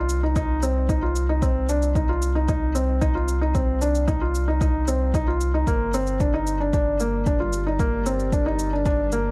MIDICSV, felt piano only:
0, 0, Header, 1, 2, 480
1, 0, Start_track
1, 0, Key_signature, -3, "minor"
1, 0, Tempo, 530973
1, 1287, Time_signature, 4, 2, 24, 8
1, 8420, End_track
2, 0, Start_track
2, 0, Title_t, "Felt piano"
2, 0, Program_c, 0, 0
2, 0, Note_on_c, 0, 65, 70
2, 180, Note_off_c, 0, 65, 0
2, 210, Note_on_c, 0, 63, 68
2, 312, Note_off_c, 0, 63, 0
2, 326, Note_on_c, 0, 63, 87
2, 538, Note_off_c, 0, 63, 0
2, 567, Note_on_c, 0, 60, 72
2, 778, Note_off_c, 0, 60, 0
2, 807, Note_on_c, 0, 63, 77
2, 913, Note_off_c, 0, 63, 0
2, 927, Note_on_c, 0, 65, 69
2, 1138, Note_off_c, 0, 65, 0
2, 1168, Note_on_c, 0, 63, 66
2, 1273, Note_off_c, 0, 63, 0
2, 1287, Note_on_c, 0, 60, 77
2, 1499, Note_off_c, 0, 60, 0
2, 1530, Note_on_c, 0, 62, 76
2, 1740, Note_off_c, 0, 62, 0
2, 1770, Note_on_c, 0, 63, 75
2, 1874, Note_off_c, 0, 63, 0
2, 1889, Note_on_c, 0, 65, 68
2, 2099, Note_off_c, 0, 65, 0
2, 2127, Note_on_c, 0, 63, 68
2, 2233, Note_off_c, 0, 63, 0
2, 2246, Note_on_c, 0, 63, 83
2, 2458, Note_off_c, 0, 63, 0
2, 2486, Note_on_c, 0, 60, 71
2, 2698, Note_off_c, 0, 60, 0
2, 2725, Note_on_c, 0, 63, 84
2, 2831, Note_off_c, 0, 63, 0
2, 2847, Note_on_c, 0, 65, 69
2, 3058, Note_off_c, 0, 65, 0
2, 3087, Note_on_c, 0, 63, 67
2, 3192, Note_off_c, 0, 63, 0
2, 3206, Note_on_c, 0, 60, 77
2, 3418, Note_off_c, 0, 60, 0
2, 3448, Note_on_c, 0, 62, 77
2, 3659, Note_off_c, 0, 62, 0
2, 3684, Note_on_c, 0, 63, 75
2, 3791, Note_off_c, 0, 63, 0
2, 3809, Note_on_c, 0, 65, 65
2, 4019, Note_off_c, 0, 65, 0
2, 4048, Note_on_c, 0, 63, 69
2, 4153, Note_off_c, 0, 63, 0
2, 4169, Note_on_c, 0, 63, 84
2, 4379, Note_off_c, 0, 63, 0
2, 4410, Note_on_c, 0, 60, 69
2, 4620, Note_off_c, 0, 60, 0
2, 4651, Note_on_c, 0, 63, 82
2, 4755, Note_off_c, 0, 63, 0
2, 4769, Note_on_c, 0, 65, 69
2, 4979, Note_off_c, 0, 65, 0
2, 5009, Note_on_c, 0, 63, 67
2, 5114, Note_off_c, 0, 63, 0
2, 5129, Note_on_c, 0, 58, 81
2, 5339, Note_off_c, 0, 58, 0
2, 5370, Note_on_c, 0, 60, 78
2, 5580, Note_off_c, 0, 60, 0
2, 5609, Note_on_c, 0, 62, 76
2, 5714, Note_off_c, 0, 62, 0
2, 5729, Note_on_c, 0, 63, 74
2, 5939, Note_off_c, 0, 63, 0
2, 5969, Note_on_c, 0, 62, 70
2, 6074, Note_off_c, 0, 62, 0
2, 6089, Note_on_c, 0, 62, 87
2, 6300, Note_off_c, 0, 62, 0
2, 6329, Note_on_c, 0, 58, 69
2, 6539, Note_off_c, 0, 58, 0
2, 6567, Note_on_c, 0, 62, 80
2, 6672, Note_off_c, 0, 62, 0
2, 6689, Note_on_c, 0, 65, 66
2, 6899, Note_off_c, 0, 65, 0
2, 6930, Note_on_c, 0, 63, 65
2, 7034, Note_off_c, 0, 63, 0
2, 7048, Note_on_c, 0, 58, 83
2, 7259, Note_off_c, 0, 58, 0
2, 7288, Note_on_c, 0, 60, 72
2, 7499, Note_off_c, 0, 60, 0
2, 7527, Note_on_c, 0, 62, 75
2, 7633, Note_off_c, 0, 62, 0
2, 7648, Note_on_c, 0, 63, 73
2, 7859, Note_off_c, 0, 63, 0
2, 7891, Note_on_c, 0, 62, 67
2, 7993, Note_off_c, 0, 62, 0
2, 8006, Note_on_c, 0, 62, 87
2, 8218, Note_off_c, 0, 62, 0
2, 8249, Note_on_c, 0, 58, 75
2, 8420, Note_off_c, 0, 58, 0
2, 8420, End_track
0, 0, End_of_file